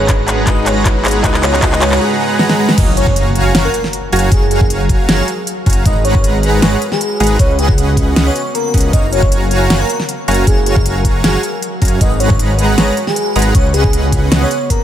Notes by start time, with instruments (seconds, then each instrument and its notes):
Already playing: detuned saw bass G#1, grand piano G#3 D#4 F#4 B4 A#5, supersaw synth G#3 G#4 B4 F#5 A#5, ambient pad G#3 B3 F#4, riser
0.09 kick, clap, closed hi-hat
0.28 clap, closed hi-hat
0.45 detuned saw bass G#1, grand piano G#3 D#4 F#4 B4 A#5, digital synth lead D#5, kick, clap, closed hi-hat
0.66 digital synth lead C#5, clap, closed hi-hat
0.85 kick, clap, closed hi-hat
1.05 clap, closed hi-hat
1.08 closed hi-hat
1.11 closed hi-hat
1.22 detuned saw bass C#2, grand piano G#3 D#4 F#4 A#5, digital synth lead D#5, kick, clap, closed hi-hat
1.26 grand piano B4
1.34 clap
1.43 digital synth lead C#5, clap, closed hi-hat
1.53 clap
1.60 detuned saw bass C#2, grand piano G#3 D#4 F#4 A#5, supersaw synth G#3 G#4 B4 F#5 A#5, digital synth lead D#5, kick, clap, closed hi-hat
1.64 grand piano B4
1.72 clap
1.82 digital synth lead C#5, clap, closed hi-hat
1.92 clap
2.01 supersaw synth G#3 G#4 B4 F#5 A#5
2.20 supersaw synth G#3 G#4 B4 F#5 A#5
2.39 supersaw synth G#3 G#4 B4 F#5 A#5, snare
2.49 snare
2.59 supersaw synth G#3 G#4 B4 F#5 A#5
2.69 snare
2.78 detuned saw bass F#1, ambient pad F#3 A#4 F5, supersaw synth F#4 C#5 F5 G#5, digital synth lead D#5, kick, closed hi-hat, crash, impact
2.97 digital synth lead C#5, closed hi-hat
3.07 kick
3.16 closed hi-hat
3.35 closed hi-hat
3.55 detuned saw bass F#1, supersaw synth F#4 C#5 F5 G#5 A#5, digital synth lead C#5, snare, closed hi-hat
3.65 digital synth lead A#4
3.74 closed hi-hat
3.84 snare
3.93 closed hi-hat
4.12 detuned saw bass F#1, supersaw synth F#4 C#5 F5 G#5 A#5, closed hi-hat
4.16 closed hi-hat
4.19 closed hi-hat
4.32 detuned saw bass F#1, supersaw synth F#4 C#5 G#5 A#5, digital synth lead G#4, kick, closed hi-hat
4.51 digital synth lead G#4, closed hi-hat
4.61 kick
4.70 closed hi-hat
4.89 kick, closed hi-hat
5.09 detuned saw bass F#1, supersaw synth F#4 C#5 F5 G#5 A#5, digital synth lead G#4, snare, closed hi-hat
5.19 digital synth lead G#4
5.28 closed hi-hat
5.47 closed hi-hat
5.66 detuned saw bass F#1, supersaw synth F#4 C#5 F5 G#5 A#5, kick, closed hi-hat
5.70 closed hi-hat
5.73 closed hi-hat
5.85 detuned saw bass G#1, ambient pad G#3 F#4 B4, supersaw synth G#3 G#4 B4 F#5 A#5, digital synth lead D#5, kick, closed hi-hat
6.05 digital synth lead C#5, closed hi-hat
6.15 kick
6.24 closed hi-hat
6.43 closed hi-hat
6.62 detuned saw bass G#1, supersaw synth G#3 G#4 B4 F#5 A#5, digital synth lead C#5, snare, closed hi-hat
6.82 closed hi-hat
6.92 digital synth lead G#4, snare
7.01 digital synth lead G#4, closed hi-hat
7.20 detuned saw bass G#1, supersaw synth G#3 G#4 B4 F#5 A#5, closed hi-hat
7.24 closed hi-hat
7.27 closed hi-hat
7.39 detuned saw bass C#2, ambient pad C#3 B3, supersaw synth C#4, digital synth lead C#5, kick, closed hi-hat
7.59 digital synth lead G#4, closed hi-hat
7.69 kick
7.78 closed hi-hat
7.97 kick, closed hi-hat
8.16 detuned saw bass C#2, supersaw synth C#4 G#4 B4 D#5 F#5, snare, closed hi-hat
8.26 digital synth lead C#5
8.36 digital synth lead C#5, closed hi-hat
8.55 digital synth lead A#4, closed hi-hat
8.74 detuned saw bass C#2, supersaw synth C#4 G#4 B4 D#5 F#5, kick, closed hi-hat
8.78 closed hi-hat
8.81 closed hi-hat
8.93 detuned saw bass F#1, ambient pad F#3 A#4 F5, supersaw synth F#4 C#5 F5 G#5 A#5, digital synth lead D#5, kick, closed hi-hat
9.13 digital synth lead C#5, closed hi-hat
9.23 kick
9.32 closed hi-hat
9.51 closed hi-hat
9.70 detuned saw bass F#1, supersaw synth F#4 C#5 G#5 A#5, digital synth lead C#5, snare, closed hi-hat
9.80 digital synth lead A#4
9.89 closed hi-hat
10.00 snare
10.09 closed hi-hat
10.28 detuned saw bass F#1, supersaw synth F#4 C#5 F5 G#5 A#5, closed hi-hat
10.31 closed hi-hat
10.34 closed hi-hat
10.47 detuned saw bass F#1, supersaw synth F#4 C#5 F5 G#5 A#5, digital synth lead G#4, kick, closed hi-hat
10.66 digital synth lead G#4, closed hi-hat
10.76 kick
10.86 closed hi-hat
11.05 kick, closed hi-hat
11.24 detuned saw bass F#1, supersaw synth F#4 C#5 F5 G#5 A#5, digital synth lead G#4, snare, closed hi-hat
11.34 digital synth lead G#4
11.43 closed hi-hat
11.62 closed hi-hat
11.82 detuned saw bass F#2, supersaw synth F#4 C#5 F5 G#5 A#5, kick, closed hi-hat
11.85 closed hi-hat
11.88 closed hi-hat
12.01 detuned saw bass G#1, ambient pad G#3 F#4 B4, supersaw synth G#3 G#4 B4 F#5 A#5, digital synth lead D#5, kick, closed hi-hat
12.20 digital synth lead C#5, closed hi-hat
12.30 kick
12.39 closed hi-hat
12.59 closed hi-hat
12.78 detuned saw bass G#1, supersaw synth G#3 G#4 B4 F#5 A#5, digital synth lead C#5, snare, closed hi-hat
12.97 closed hi-hat
13.07 digital synth lead G#4, snare
13.16 digital synth lead G#4, closed hi-hat
13.36 detuned saw bass G#1, supersaw synth G#3 G#4 B4 F#5 A#5, closed hi-hat
13.39 closed hi-hat
13.42 closed hi-hat
13.55 detuned saw bass C#2, ambient pad C#3 B3, supersaw synth C#4 G#4 D#5, digital synth lead C#5, kick, closed hi-hat
13.74 digital synth lead G#4, closed hi-hat
13.84 kick
13.93 closed hi-hat
14.12 kick, closed hi-hat
14.32 detuned saw bass C#2, supersaw synth C#4 G#4 B4 D#5 F#5, snare, closed hi-hat
14.42 digital synth lead C#5
14.51 digital synth lead C#5, closed hi-hat
14.70 digital synth lead A#4, kick, closed hi-hat